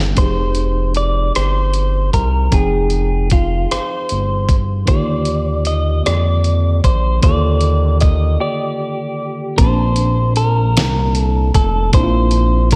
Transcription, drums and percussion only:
0.17 kick loud
0.17 closed hi-hat medium
0.55 closed hi-hat soft
0.94 closed hi-hat soft
1.35 cross-stick medium
1.35 closed hi-hat medium
1.74 closed hi-hat soft
2.13 kick medium
2.13 closed hi-hat soft
2.52 kick loud
2.52 closed hi-hat medium
2.90 closed hi-hat soft
3.30 kick loud
3.30 closed hi-hat soft
3.71 cross-stick medium
3.71 closed hi-hat medium
4.09 closed hi-hat soft
4.49 kick medium
4.49 closed hi-hat soft
4.87 kick loud
4.87 closed hi-hat medium
5.25 closed hi-hat soft
5.65 closed hi-hat medium
6.06 cross-stick medium
6.06 closed hi-hat medium
6.44 closed hi-hat soft
6.84 kick medium
6.84 closed hi-hat soft
7.23 kick loud
7.23 closed hi-hat medium
7.61 closed hi-hat soft
8.01 kick loud
8.01 closed hi-hat medium
9.58 kick loud
9.58 closed hi-hat medium
9.96 closed hi-hat soft
10.36 closed hi-hat medium
10.77 snare loud
10.77 closed hi-hat medium
11.15 closed hi-hat soft
11.54 kick medium
11.54 closed hi-hat medium
11.93 kick loud
11.93 closed hi-hat medium
12.31 closed hi-hat medium
12.71 kick loud
12.71 closed hi-hat medium

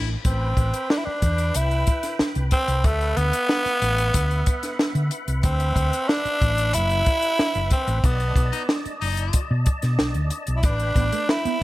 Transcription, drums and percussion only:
0.25 kick loud
0.25 closed hi-hat medium
0.57 kick medium
0.57 closed hi-hat medium
0.74 closed hi-hat medium
0.90 snare loud
1.22 kick medium
1.22 closed hi-hat medium
1.38 closed hi-hat medium
1.54 closed hi-hat loud
1.71 closed hi-hat soft
1.87 kick medium
1.87 closed hi-hat medium
2.03 snare soft
2.03 closed hi-hat medium
2.19 snare medium
2.35 closed hi-hat soft
2.51 kick medium
2.51 closed hi-hat medium
2.68 closed hi-hat medium
2.84 kick loud
2.84 closed hi-hat medium
3.01 closed hi-hat soft
3.17 closed hi-hat medium
3.33 closed hi-hat medium
3.49 snare loud
3.66 closed hi-hat soft
3.82 closed hi-hat medium
3.98 closed hi-hat medium
4.14 kick medium
4.14 closed hi-hat loud
4.31 closed hi-hat soft
4.46 kick medium
4.46 closed hi-hat medium
4.63 snare soft
4.63 closed hi-hat medium
4.79 snare medium
4.95 closed hi-hat soft
5.11 closed hi-hat medium
5.28 closed hi-hat soft
5.43 kick loud
5.43 closed hi-hat medium
5.60 closed hi-hat soft
5.76 kick medium
5.76 closed hi-hat medium
5.93 closed hi-hat medium
6.09 snare loud
6.26 closed hi-hat soft
6.42 kick medium
6.42 closed hi-hat medium
6.58 closed hi-hat medium
6.73 closed hi-hat loud
6.90 closed hi-hat soft
7.06 kick medium
7.06 closed hi-hat medium
7.22 closed hi-hat medium
7.39 snare loud
7.55 closed hi-hat soft
7.71 kick medium
7.71 closed hi-hat medium
7.88 closed hi-hat soft
8.04 kick loud
8.04 closed hi-hat medium
8.20 closed hi-hat soft
8.36 kick medium
8.36 closed hi-hat medium
8.53 closed hi-hat medium
8.69 snare loud
8.85 closed hi-hat soft
9.02 open hi-hat medium
9.17 closed hi-hat medium
9.33 kick medium
9.33 closed hi-hat loud
9.66 kick medium
9.66 closed hi-hat medium
9.82 snare soft
9.82 closed hi-hat medium
9.99 snare medium
10.14 closed hi-hat soft
10.30 closed hi-hat medium
10.47 closed hi-hat soft
10.63 kick loud
10.63 closed hi-hat medium
10.79 closed hi-hat soft
10.96 kick medium
10.96 closed hi-hat medium
11.12 closed hi-hat medium
11.29 snare loud
11.45 closed hi-hat soft

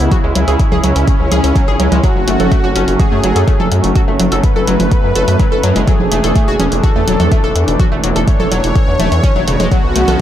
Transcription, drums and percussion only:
0.12 kick loud
0.12 closed hi-hat medium
0.12 low conga medium
0.35 closed hi-hat loud
0.48 closed hi-hat medium
0.60 kick loud
0.60 closed hi-hat medium
0.72 low conga medium
0.84 closed hi-hat medium
0.96 closed hi-hat medium
1.08 kick loud
1.08 closed hi-hat medium
1.32 closed hi-hat loud
1.32 low conga loud
1.44 closed hi-hat medium
1.56 kick loud
1.56 closed hi-hat medium
1.80 closed hi-hat medium
1.92 closed hi-hat medium
1.92 low conga medium
2.04 kick loud
2.04 closed hi-hat medium
2.28 closed hi-hat loud
2.40 closed hi-hat medium
2.40 low conga loud
2.52 kick loud
2.52 closed hi-hat medium
2.76 closed hi-hat medium
2.88 closed hi-hat medium
3.00 kick loud
3.00 closed hi-hat medium
3.00 low conga loud
3.24 closed hi-hat loud
3.36 closed hi-hat medium
3.48 kick loud
3.48 closed hi-hat medium
3.60 low conga loud
3.72 closed hi-hat loud
3.84 closed hi-hat medium
3.96 kick loud
3.96 closed hi-hat medium
4.20 closed hi-hat loud
4.20 low conga loud
4.32 closed hi-hat medium
4.44 kick loud
4.44 closed hi-hat medium
4.67 closed hi-hat loud
4.80 closed hi-hat medium
4.80 low conga loud
4.92 kick loud
4.92 closed hi-hat medium
5.16 closed hi-hat loud
5.28 closed hi-hat medium
5.40 kick loud
5.40 closed hi-hat medium
5.40 low conga loud
5.63 closed hi-hat loud
5.76 closed hi-hat medium
5.88 kick loud
5.88 closed hi-hat medium
6.00 low conga medium
6.12 closed hi-hat loud
6.24 closed hi-hat medium
6.36 kick loud
6.36 closed hi-hat medium
6.60 closed hi-hat loud
6.60 low conga medium
6.72 closed hi-hat medium
6.84 kick loud
6.84 closed hi-hat medium
7.08 closed hi-hat loud
7.20 closed hi-hat medium
7.20 low conga loud
7.32 kick loud
7.32 closed hi-hat medium
7.56 closed hi-hat loud
7.68 closed hi-hat medium
7.80 kick loud
7.80 closed hi-hat medium
7.80 low conga medium
8.04 closed hi-hat loud
8.16 closed hi-hat medium
8.28 kick loud
8.28 closed hi-hat medium
8.40 low conga medium
8.52 closed hi-hat medium
8.64 closed hi-hat medium
8.76 kick loud
8.76 closed hi-hat medium
9.00 closed hi-hat loud
9.00 low conga medium
9.12 closed hi-hat medium
9.23 kick loud
9.23 closed hi-hat medium
9.48 closed hi-hat loud
9.60 closed hi-hat medium
9.60 low conga medium
9.71 kick loud
9.71 closed hi-hat medium
9.96 closed hi-hat loud
10.08 closed hi-hat medium
10.08 low conga medium

